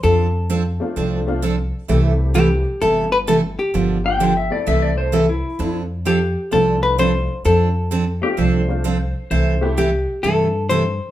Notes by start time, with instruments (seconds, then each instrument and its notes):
0.03 upright bass F2, steel-string acoustic guitar F3 C4 D4 A4, hollow-body jazz guitar A4
0.50 steel-string acoustic guitar F3 C4 D4 A4
0.80 honky-tonk piano A3 C4 D4 F4
0.96 upright bass C2, steel-string acoustic guitar F3 C4 D4 A4
1.27 honky-tonk piano A3 C4 D4 F4
1.42 steel-string acoustic guitar F3 C4 D4 A4
1.88 upright bass C2, steel-string acoustic guitar C3 E3 A3 E4 A4, honky-tonk piano A3 C4 E4 G4
2.34 steel-string acoustic guitar C3 E3 A3 E4 A4, hollow-body jazz guitar G4
2.81 upright bass G1, steel-string acoustic guitar C3 E3 A3 E4 A4, hollow-body jazz guitar A4
3.12 hollow-body jazz guitar B4
3.27 steel-string acoustic guitar C3 E3 A3 E4 A4, hollow-body jazz guitar A4
3.59 hollow-body jazz guitar G4
3.74 upright bass G1, steel-string acoustic guitar D3 F3 A#3 D4 G4
4.04 honky-tonk piano A#3 D4 F4 G4, electric slide guitar G5
4.20 steel-string acoustic guitar D3 F3 A#3 D4 G4
4.37 electric slide guitar E5
4.50 honky-tonk piano A3 C4 E4 A4, electric slide guitar D5
4.66 upright bass C2, steel-string acoustic guitar C3 E3 A3 E4 A4, electric slide guitar E5
4.82 electric slide guitar D5
4.98 electric slide guitar C5
5.12 steel-string acoustic guitar C3 E3 A3 E4 A4, electric slide guitar A4
5.29 electric slide guitar E4
5.59 upright bass F2, steel-string acoustic guitar F3 C4 D4 A4
6.05 steel-string acoustic guitar F3 C4 D4 A4, hollow-body jazz guitar G4
6.51 upright bass C2, steel-string acoustic guitar F3 C4 D4 A4, honky-tonk piano A3 C4 D4 F4, hollow-body jazz guitar A4
6.83 hollow-body jazz guitar B4
6.98 steel-string acoustic guitar F3 C4 D4 A4, hollow-body jazz guitar C5
7.45 upright bass F2, steel-string acoustic guitar F3 C4 D4 A4, hollow-body jazz guitar A4
7.91 steel-string acoustic guitar F3 C4 D4 A4
8.22 honky-tonk piano A3 C4 D4 F4, electric slide guitar G4
8.37 upright bass C2, steel-string acoustic guitar F3 C4 D4 A4, electric slide guitar C5
8.68 honky-tonk piano A3 C4 D4 F4
8.84 steel-string acoustic guitar F3 C4 D4 A4
9.31 upright bass C2, steel-string acoustic guitar C3 E3 A3 E4 A4, electric slide guitar C5
9.61 honky-tonk piano A3 C4 E4 G4
9.77 steel-string acoustic guitar C3 E3 A3 E4 A4, hollow-body jazz guitar G4
10.23 upright bass G2, steel-string acoustic guitar C3 E3 A3 E4 A4, hollow-body jazz guitar A4
10.69 steel-string acoustic guitar C3 E3 A3 E4 A4, hollow-body jazz guitar C5